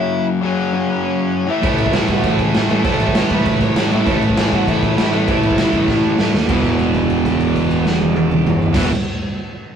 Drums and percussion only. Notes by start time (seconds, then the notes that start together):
1.63 kick, crash
1.78 crash
1.86 kick
1.93 snare, crash
2.08 kick, crash
2.24 kick, crash
2.39 kick, crash
2.55 snare, crash
2.69 crash
2.84 kick, crash
3.00 crash
3.07 kick
3.15 snare, crash
3.30 kick, crash
3.46 kick, crash
3.61 kick, crash
3.76 snare, crash
3.91 crash
4.07 kick, crash
4.22 crash
4.29 kick
4.37 snare, crash
4.52 kick, crash
4.68 kick, crash
4.83 kick, crash
4.98 snare, crash
5.13 crash
5.28 kick, crash
5.43 crash
5.50 kick
5.58 snare, crash
5.73 kick, crash
5.88 kick, snare
6.18 snare
6.34 snare
6.49 kick, crash
6.64 kick, crash
6.79 crash
6.95 kick, crash
7.10 crash
7.25 kick, crash
7.40 crash
7.56 kick, crash
7.71 crash
7.86 snare
8.01 high tom
8.16 high tom
8.31 mid tom
8.47 mid tom
8.62 floor tom
8.74 kick, snare, crash